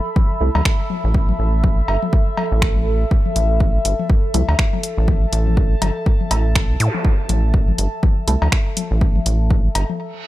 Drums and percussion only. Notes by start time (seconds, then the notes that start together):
0.16 kick, high tom
0.55 high tom, cowbell
0.65 finger snap, kick
0.90 high tom
1.14 kick
1.29 high tom
1.64 kick, high tom
1.88 cowbell
2.03 high tom
2.13 kick
2.37 high tom, cowbell
2.62 finger snap, kick
2.76 high tom
3.11 kick
3.26 high tom
3.36 closed hi-hat
3.60 kick, high tom
3.85 closed hi-hat
3.99 high tom
4.10 kick
4.34 closed hi-hat, high tom
4.49 cowbell
4.59 finger snap, kick
4.73 high tom
4.83 closed hi-hat
5.08 kick, high tom
5.33 closed hi-hat
5.47 high tom
5.57 kick
5.82 closed hi-hat, high tom, cowbell
6.06 kick
6.21 high tom
6.31 closed hi-hat, cowbell
6.55 finger snap, kick, high tom
6.80 closed hi-hat
6.94 high tom
7.05 kick
7.29 closed hi-hat, high tom
7.54 kick
7.68 high tom
7.78 closed hi-hat
8.03 kick, high tom
8.28 closed hi-hat
8.42 high tom, cowbell
8.52 finger snap, kick
8.77 closed hi-hat, high tom
9.01 kick
9.16 high tom
9.26 closed hi-hat
9.51 kick, high tom
9.75 closed hi-hat, cowbell
9.89 high tom